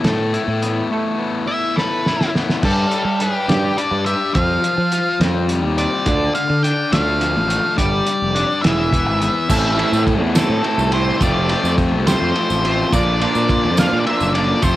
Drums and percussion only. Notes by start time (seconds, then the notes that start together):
0.04 snare, closed hi-hat
0.34 closed hi-hat
0.62 closed hi-hat
1.78 snare
2.06 snare
2.21 snare
2.35 snare
2.49 snare
2.63 kick, crash
2.92 closed hi-hat
3.20 closed hi-hat
3.49 snare, closed hi-hat
3.78 closed hi-hat
4.06 closed hi-hat
4.35 kick, closed hi-hat
4.64 closed hi-hat
4.92 closed hi-hat
5.21 snare, closed hi-hat
5.49 closed hi-hat
5.78 closed hi-hat
6.06 kick, closed hi-hat
6.35 closed hi-hat
6.64 closed hi-hat
6.93 snare, closed hi-hat
7.21 closed hi-hat
7.50 closed hi-hat
7.78 kick, closed hi-hat
8.07 closed hi-hat
8.36 closed hi-hat
8.64 snare, closed hi-hat
8.93 kick, closed hi-hat
9.22 closed hi-hat
9.50 kick, crash, tambourine
9.79 ride
9.93 tambourine
10.07 kick, ride, tambourine
10.35 snare, ride, tambourine
10.64 ride
10.79 tambourine
10.92 ride, tambourine
11.21 kick, ride, tambourine
11.49 ride
11.65 tambourine
11.78 kick, ride, tambourine
12.07 snare, ride, tambourine
12.35 ride
12.50 tambourine
12.64 ride, tambourine
12.92 kick, ride, tambourine
13.21 ride
13.35 tambourine
13.49 kick, ride, tambourine
13.77 snare, ride, tambourine
14.07 ride
14.20 tambourine
14.35 ride, tambourine
14.62 kick, ride, tambourine